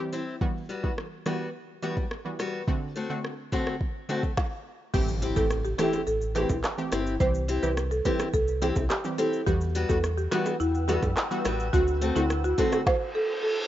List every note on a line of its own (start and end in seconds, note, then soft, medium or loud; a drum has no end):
0.00 0.20 E3 medium
0.00 0.20 G3 medium
0.00 0.20 C4 medium
0.00 0.20 G4 medium
0.12 0.34 C4 medium
0.12 0.35 E4 medium
0.12 0.35 G4 medium
0.41 0.62 E3 medium
0.41 0.62 G3 medium
0.41 0.63 B3 medium
0.41 0.63 F#4 loud
0.41 kick loud
0.69 0.91 G3 medium
0.69 0.91 B3 medium
0.69 0.92 F#4 medium
0.83 1.05 E3 medium
0.83 1.05 G3 medium
0.83 1.05 B3 medium
0.83 1.05 F#4 medium
0.83 kick medium
0.98 cross-stick medium
1.26 1.47 E3 medium
1.26 1.48 G3 medium
1.26 1.47 G3 medium
1.26 1.47 B3 medium
1.26 1.48 B3 medium
1.26 1.48 F#4 medium
1.26 cross-stick medium
1.82 2.04 E3 medium
1.82 2.04 G3 medium
1.82 2.04 B3 medium
1.82 1.96 B3 medium
1.82 2.04 F#4 medium
1.82 1.96 F#4 medium
1.97 muted steel-string acoustic guitar stroke soft
1.97 kick medium
2.11 cross-stick medium
2.25 2.46 E3 medium
2.25 2.47 G3 medium
2.25 2.47 B3 medium
2.25 2.47 F#4 medium
2.39 2.61 G3 medium
2.39 2.61 B3 medium
2.39 2.61 F#4 loud
2.39 cross-stick medium
2.67 2.89 D3 loud
2.67 2.89 A3 medium
2.67 2.89 C4 medium
2.67 2.89 F#4 loud
2.67 kick loud
2.96 3.17 A3 medium
2.96 3.18 C4 medium
2.96 3.18 F#4 medium
3.10 3.31 D3 medium
3.10 3.31 A3 medium
3.10 3.31 C4 medium
3.10 3.31 F#4 medium
3.24 cross-stick medium
3.52 3.74 D3 medium
3.52 3.74 A3 medium
3.52 3.74 C4 medium
3.52 3.74 F#4 medium
3.52 3.75 F#4 medium
3.52 kick medium
3.67 cross-stick medium
3.81 kick medium
4.09 4.30 D3 medium
4.09 4.31 A3 medium
4.09 4.30 A3 medium
4.09 4.30 C4 medium
4.09 4.23 C4 medium
4.09 4.31 F#4 medium
4.09 4.22 F#4 loud
4.23 muted steel-string acoustic guitar stroke soft
4.23 kick medium
4.37 kick loud
4.37 snare medium
4.94 5.32 A1 loud
4.94 5.15 E3 loud
4.94 5.15 A3 medium
4.94 5.15 C4 medium
4.94 5.16 G4 medium
4.94 5.15 G4 loud
4.94 kick loud
4.94 crash loud
4.94 impact medium
4.94 shaker medium
5.08 shaker medium
5.22 5.44 C4 medium
5.22 5.44 E4 medium
5.22 5.44 G4 loud
5.22 closed hi-hat medium
5.22 shaker medium
5.36 5.75 A1 loud
5.36 5.58 E3 medium
5.36 5.58 A3 medium
5.36 5.58 C4 medium
5.36 5.58 G4 medium
5.36 5.47 A4 medium
5.36 kick medium
5.36 shaker medium
5.50 cross-stick medium
5.50 shaker medium
5.65 5.76 G4 medium
5.65 shaker soft
5.78 6.00 E3 medium
5.78 6.00 A3 medium
5.78 6.00 C4 medium
5.78 6.01 E4 medium
5.78 6.00 G4 medium
5.78 6.01 G4 loud
5.78 5.90 A4 medium
5.78 cross-stick medium
5.78 closed hi-hat medium
5.78 low bongo medium
5.78 shaker medium
5.93 high bongo medium
5.93 shaker medium
6.07 6.46 A1 loud
6.07 6.18 A4 medium
6.07 shaker medium
6.21 shaker medium
6.35 6.57 E3 medium
6.35 6.57 A3 medium
6.35 6.57 C4 medium
6.35 6.49 E4 medium
6.35 6.57 G4 medium
6.35 6.48 G4 medium
6.35 6.46 B4 medium
6.35 closed hi-hat medium
6.35 high bongo medium
6.35 shaker medium
6.49 6.63 B1 medium
6.49 muted steel-string acoustic guitar stroke soft
6.49 kick medium
6.49 high bongo medium
6.49 shaker medium
6.64 cross-stick medium
6.64 clap medium
6.64 shaker medium
6.78 6.99 E3 medium
6.78 6.99 A3 medium
6.78 6.99 C4 medium
6.78 6.99 G4 medium
6.78 shaker medium
6.92 7.18 G1 loud
6.92 7.13 C4 medium
6.92 7.14 E4 loud
6.92 7.14 G4 loud
6.92 cross-stick loud
6.92 closed hi-hat medium
6.92 low bongo medium
6.92 shaker soft
7.07 shaker medium
7.20 7.59 C2 loud
7.20 7.42 E3 loud
7.20 7.42 G3 medium
7.20 7.42 C4 medium
7.20 7.42 G4 loud
7.20 7.42 C5 loud
7.20 kick loud
7.20 shaker medium
7.35 shaker medium
7.48 7.70 C4 medium
7.48 7.70 E4 medium
7.48 7.71 G4 medium
7.48 closed hi-hat medium
7.48 shaker medium
7.63 8.01 C2 loud
7.63 7.84 E3 medium
7.63 7.84 G3 medium
7.63 7.84 C4 medium
7.63 7.84 G4 medium
7.63 7.74 B4 medium
7.63 shaker medium
7.77 cross-stick loud
7.77 shaker medium
7.91 8.02 A4 medium
7.91 shaker soft
8.05 8.26 E3 medium
8.05 8.27 G3 medium
8.05 8.27 C4 medium
8.05 8.27 E4 loud
8.05 8.27 G4 medium
8.05 8.27 G4 loud
8.05 8.17 B4 medium
8.05 kick medium
8.05 closed hi-hat medium
8.05 low bongo medium
8.05 shaker medium
8.19 cross-stick medium
8.19 high bongo medium
8.19 shaker medium
8.34 8.72 C2 loud
8.34 8.45 A4 medium
8.34 kick medium
8.34 shaker medium
8.48 shaker medium
8.62 8.83 E3 medium
8.62 8.83 G3 medium
8.62 8.83 C4 medium
8.62 8.75 E4 medium
8.62 8.73 G4 medium
8.62 8.83 G4 medium
8.62 8.75 G4 medium
8.62 closed hi-hat medium
8.62 high bongo medium
8.62 shaker medium
8.76 8.89 C2 loud
8.76 muted steel-string acoustic guitar stroke soft
8.76 kick medium
8.76 high bongo medium
8.76 shaker medium
8.90 9.01 G4 medium
8.90 cross-stick medium
8.90 clap medium
8.90 shaker medium
9.04 9.26 E3 medium
9.04 9.26 G3 medium
9.04 9.26 C4 medium
9.04 9.26 G4 medium
9.04 shaker medium
9.18 9.40 C4 medium
9.18 9.40 E4 medium
9.18 9.41 G4 medium
9.18 9.30 A4 medium
9.18 closed hi-hat medium
9.18 low bongo medium
9.18 shaker soft
9.33 shaker medium
9.47 9.85 E2 loud
9.47 9.68 E3 loud
9.47 9.68 G3 medium
9.47 9.68 B3 medium
9.47 9.68 F#4 loud
9.47 9.69 G4 loud
9.47 11.71 B4 medium
9.47 12.83 F#5 medium
9.47 11.71 G5 medium
9.47 11.71 E6 medium
9.47 kick loud
9.47 shaker medium
9.61 shaker medium
9.75 9.97 G3 medium
9.75 9.97 B3 medium
9.75 9.97 F#4 loud
9.75 closed hi-hat medium
9.75 shaker medium
9.89 10.28 E2 loud
9.89 10.11 E3 medium
9.89 10.11 G3 medium
9.89 10.11 B3 medium
9.89 10.11 F#4 medium
9.89 10.00 A4 medium
9.89 kick medium
9.89 shaker medium
10.04 cross-stick medium
10.04 shaker medium
10.18 10.29 G4 medium
10.18 shaker soft
10.31 10.53 E3 medium
10.31 10.53 G3 medium
10.31 10.53 B3 medium
10.31 10.54 B3 loud
10.31 10.43 F#4 medium
10.31 10.53 F#4 medium
10.31 10.54 F#4 loud
10.31 cross-stick medium
10.31 closed hi-hat medium
10.31 low bongo medium
10.31 shaker medium
10.46 high bongo medium
10.46 shaker medium
10.60 10.99 E2 loud
10.60 10.71 E4 medium
10.60 shaker medium
10.75 shaker medium
10.88 11.10 E3 medium
10.88 11.10 G3 medium
10.88 11.10 B3 medium
10.88 11.02 B3 medium
10.88 11.10 F#4 medium
10.88 11.01 F#4 medium
10.88 10.99 G4 medium
10.88 closed hi-hat medium
10.88 high bongo medium
10.88 shaker medium
11.02 11.15 F#2 medium
11.02 muted steel-string acoustic guitar stroke medium
11.02 kick medium
11.02 high bongo medium
11.02 shaker medium
11.17 cross-stick medium
11.17 clap medium
11.17 shaker medium
11.31 11.52 E3 medium
11.31 11.52 G3 medium
11.31 11.52 B3 medium
11.31 11.52 F#4 medium
11.31 shaker soft
11.45 11.71 A1 medium
11.45 11.66 G3 medium
11.45 11.67 B3 loud
11.45 11.67 F#4 medium
11.45 cross-stick loud
11.45 closed hi-hat medium
11.45 low bongo medium
11.45 shaker medium
11.60 shaker medium
11.73 12.12 D2 loud
11.73 11.95 D3 loud
11.73 11.95 A3 medium
11.73 11.95 C4 medium
11.73 11.95 F#4 loud
11.73 12.86 C5 medium
11.73 12.86 A5 medium
11.73 12.86 D6 medium
11.73 kick loud
11.73 shaker medium
11.88 shaker medium
12.01 12.23 A3 medium
12.01 12.23 C4 medium
12.01 12.24 F#4 medium
12.01 closed hi-hat medium
12.01 high bongo medium
12.01 shaker medium
12.16 12.54 D2 loud
12.16 12.37 D3 medium
12.16 12.37 A3 medium
12.16 12.37 C4 medium
12.16 12.27 E4 medium
12.16 12.37 F#4 medium
12.16 high bongo medium
12.16 shaker medium
12.30 cross-stick loud
12.30 shaker medium
12.44 12.55 F#4 medium
12.44 shaker soft
12.58 12.79 D3 medium
12.58 12.80 A3 medium
12.58 12.79 A3 medium
12.58 12.80 C4 medium
12.58 12.80 F#4 medium
12.58 12.80 F#4 loud
12.58 12.69 A4 medium
12.58 kick medium
12.58 closed hi-hat medium
12.58 low bongo medium
12.58 shaker medium
12.72 cross-stick medium
12.72 high bongo medium
12.72 shaker medium
12.86 12.98 C5 medium
12.86 kick loud
12.86 snare medium
12.86 reverse cymbal medium
13.15 13.26 A4 medium
13.43 13.67 A4 medium